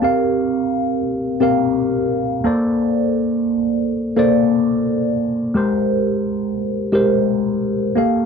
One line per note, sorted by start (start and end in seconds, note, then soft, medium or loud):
0.02 1.00 C4 medium
0.02 1.00 G4 medium
0.02 1.00 A#4 medium
0.02 1.01 F5 medium
1.40 2.38 C4 medium
1.40 2.38 G4 medium
1.40 2.39 A#4 medium
1.40 2.39 F5 medium
2.44 3.56 A#3 medium
2.44 3.56 A4 medium
2.44 3.56 C5 medium
2.44 3.57 D5 medium
4.17 5.14 A#3 medium
4.17 5.14 A4 medium
4.17 5.15 C5 medium
4.17 5.15 D5 loud
5.54 6.52 G#3 medium
5.54 6.52 G4 medium
5.54 6.53 A#4 medium
5.54 6.53 C5 loud
6.92 7.90 G#3 medium
6.92 7.90 G4 medium
6.92 7.91 A#4 medium
6.92 7.91 C5 loud
7.96 8.26 A#3 medium
7.96 8.26 G4 medium
7.96 8.26 A4 medium
7.96 8.26 F5 medium